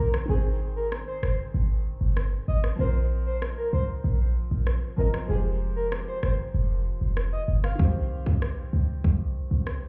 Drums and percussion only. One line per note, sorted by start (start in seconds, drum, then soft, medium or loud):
0.14 cross-stick loud
0.92 cross-stick medium
1.23 cross-stick medium
2.17 cross-stick medium
2.64 cross-stick medium
3.42 cross-stick medium
4.67 cross-stick medium
5.14 cross-stick medium
5.92 cross-stick loud
6.23 cross-stick medium
7.17 cross-stick medium
7.64 cross-stick medium
7.79 kick loud
8.26 kick medium
8.42 cross-stick medium
9.04 kick medium
9.67 cross-stick medium